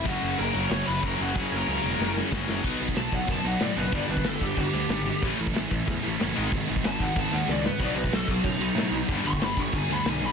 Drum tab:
CC |x---x---x---x---|x---x-----------|x---x---x---x---|x---x---x---x---|
SD |--------o-------|--------o-o-o-o-|----o-------o---|----o-------o---|
BD |o-----------o---|o-----------o---|o--o--o-o-------|o--o--o-o-------|

CC |x---x---x---x---|x---x---x-------|x---x---x---x---|x---x---x---x---|
SD |----o-------o---|----o-------o-o-|----o-------o---|----o-------o---|
BD |o--o--o-o-------|o--o--o-o-------|o--o--o-o-------|o--o--o-o-------|